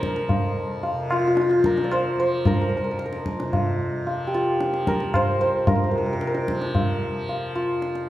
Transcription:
Already playing: tanpura F2 C3 F3, santur F4 A#4 C5
0.03 tabla ke
0.16 tabla te
0.29 tanpura F2, tabla tin, tabla ge
0.83 tabla tin
0.94 tanpura C3
1.11 santur F4, tabla na
1.19 santur F4
1.27 santur F4
1.35 santur F4, tabla te
1.41 santur F4
1.49 santur F4, tabla te
1.55 tanpura F3
1.64 santur A#4, tabla ke
1.78 tabla te
1.84 santur D5
1.92 santur C5, tabla na
2.17 tanpura F3, santur C5
2.45 santur A#4, tabla tin, tabla ge
2.54 santur A#4
2.61 santur A#4
2.69 santur A#4
2.77 tanpura F2, santur A#4
2.84 santur A#4
2.91 santur A#4
2.99 santur A#4, tabla te
3.06 santur A#4
3.12 santur A#4, tabla te
3.26 tabla ke
3.39 tanpura C3, tabla te
3.53 tabla tin, tabla ge
4.01 tanpura F3
4.07 tabla tin
4.27 santur G4
4.34 santur F4
4.61 tanpura F3, tabla te
4.74 tabla te
4.87 santur A#4, tabla ke
5.00 tabla te
5.14 santur C5, tabla na, tabla ge
5.25 tanpura F2
5.41 santur C5, tabla te
5.67 santur A#4, tabla tin, tabla ge
5.75 santur A#4
5.84 tanpura C3, santur A#4
5.91 santur A#4
5.98 santur A#4
6.06 santur A#4
6.13 santur A#4
6.21 santur A#4, tabla te
6.27 santur A#4
6.35 santur A#4, tabla te
6.48 tanpura F3, tabla ke
6.61 tabla te
6.75 tabla tin, tabla ge
7.09 tanpura F3
7.29 tabla tin
7.55 santur F4
7.71 tanpura F2
7.82 tabla te
7.95 tabla te

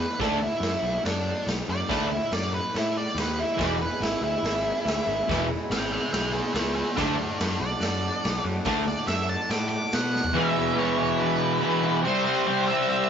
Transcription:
0.00 lead electric guitar B4
0.20 picked electric bass D2, distorted electric guitar D3 A3 D4, lead electric guitar A4, kick, snare, open hi-hat
0.43 lead electric guitar E4
0.60 picked electric bass F#2, snare, open hi-hat
0.82 picked electric bass B1
1.04 picked electric bass F#2, lead electric guitar D4, snare, open hi-hat
1.46 picked electric bass B1, snare, open hi-hat
1.68 picked electric bass F#2, lead electric guitar D5
1.89 picked electric bass D2, distorted electric guitar D3 A3 D4, lead electric guitar B4, kick, snare, open hi-hat
2.11 lead electric guitar E4
2.31 picked electric bass F#2, lead electric guitar D5, snare, open hi-hat
2.54 lead electric guitar B4
2.74 picked electric bass A2, lead electric guitar E4, snare, open hi-hat
2.97 lead electric guitar D5
3.14 picked electric bass D#2, snare, open hi-hat
3.20 lead electric guitar B4
3.40 lead electric guitar E4
3.53 distorted electric guitar E2, transistor combo organ E4 G#4 B4
3.58 picked electric bass E1, distorted electric guitar B2 E3, lead electric guitar D5, kick, snare, open hi-hat
3.81 lead electric guitar B4
4.00 picked electric bass G#1, lead electric guitar E4, snare, open hi-hat
4.21 picked electric bass D2, lead electric guitar E4
4.42 picked electric bass G#1, snare, open hi-hat
4.85 picked electric bass D2, snare, open hi-hat
5.07 picked electric bass G#1
5.28 picked electric bass E1, distorted electric guitar E2 B2 E3, kick, snare, open hi-hat
5.70 picked electric bass G#1, lead electric guitar E5 G5, snare, open hi-hat
5.92 lead electric guitar E5 G5
6.13 picked electric bass B1, lead electric guitar E5 G5, snare, open hi-hat
6.33 lead electric guitar G#4 E5
6.53 picked electric bass C#2, lead electric guitar G#4 E5, snare, open hi-hat
6.75 lead electric guitar G#4 E5
6.93 distorted electric guitar D3, transistor combo organ F#4 A4 D5, lead electric guitar B4, open hi-hat
6.97 picked electric bass D2, distorted electric guitar A3 D4, lead electric guitar D5, kick, snare
7.17 lead electric guitar B4 D5
7.39 picked electric bass F#2, lead electric guitar B4 D5, snare, open hi-hat
7.60 picked electric bass B1, lead electric guitar D5
7.80 picked electric bass F#2, snare, open hi-hat
8.24 picked electric bass B1, snare, open hi-hat
8.44 picked electric bass F#2
8.65 picked electric bass D2, distorted electric guitar D3 A3 D4, kick, snare, open hi-hat
8.88 lead electric guitar D5
9.07 picked electric bass F#2, lead electric guitar E5, snare, open hi-hat
9.29 lead electric guitar A5
9.49 picked electric bass A2, lead electric guitar D6, snare, open hi-hat
9.69 lead electric guitar D6
9.92 picked electric bass B2, lead electric guitar F#5, snare, open hi-hat
10.16 snare
10.24 floor tom
10.32 distorted electric guitar E2 B2, transistor combo organ E4 G#4, lead electric guitar E5
10.37 distorted electric guitar E3, transistor combo organ B4
10.55 distorted electric guitar B2 E3
10.76 distorted electric guitar E2 B2 E3, lead electric guitar C#5
10.97 distorted electric guitar B2 E3
11.20 lead electric guitar B4
11.60 distorted electric guitar E2 B2 E3
11.82 distorted electric guitar B2 E3
12.01 distorted electric guitar C3, transistor combo organ E4 G4 C5
12.05 distorted electric guitar G3 C4, lead electric guitar C5
12.24 distorted electric guitar G3 C4, lead electric guitar C5
12.46 distorted electric guitar C3 G3 C4
12.67 distorted electric guitar G3 C4, lead electric guitar E5
12.89 lead electric guitar E5

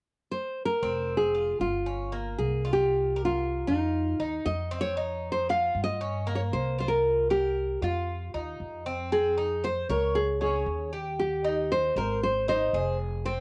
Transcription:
0.32 nylon-string guitar C5
0.65 nylon-string guitar A#4
0.82 upright bass F1, cuban tres C4
1.17 nylon-string guitar G#4
1.35 cuban tres F4
1.60 upright bass G1, nylon-string guitar F4
1.86 cuban tres C#4
2.12 cuban tres A#3
2.38 upright bass C2, nylon-string guitar G#4
2.65 cuban tres F4
2.73 nylon-string guitar G4
3.16 cuban tres A#4
3.25 nylon-string guitar F4
3.67 upright bass F2, nylon-string guitar D#4, cuban tres F4
4.20 upright bass D#2, cuban tres D#4
4.45 upright bass F2, nylon-string guitar D#5
4.71 cuban tres C4
4.81 nylon-string guitar C#5
4.97 cuban tres D#4
5.32 nylon-string guitar C5
5.49 cuban tres F4, nylon-string guitar F5
5.75 upright bass G2
5.84 nylon-string guitar D#5
6.01 cuban tres C#4
6.27 cuban tres A#3
6.36 nylon-string guitar C#5
6.52 upright bass C2, nylon-string guitar C5
6.79 cuban tres F4, nylon-string guitar C5
6.88 nylon-string guitar A#4
7.30 nylon-string guitar G4, cuban tres A#4
7.82 upright bass F2, cuban tres F4, nylon-string guitar F4
8.34 upright bass D#2, cuban tres D#4
8.60 upright bass F2
8.86 cuban tres C4
9.12 cuban tres C4, nylon-string guitar G#4
9.38 cuban tres D#4
9.64 cuban tres C5, nylon-string guitar C5
9.89 upright bass C#2, nylon-string guitar A#4, cuban tres C#5
10.15 nylon-string guitar G#4
10.41 cuban tres C#4, nylon-string guitar G#4
10.66 upright bass D#2
10.93 cuban tres G4
11.20 nylon-string guitar G4
11.44 cuban tres D#4
11.72 nylon-string guitar C5
11.96 upright bass G#1, nylon-string guitar A#4, cuban tres C5
12.23 nylon-string guitar C5
12.48 cuban tres D#4, nylon-string guitar C5
12.73 upright bass F1, cuban tres G#4
13.26 cuban tres C4, nylon-string guitar C5

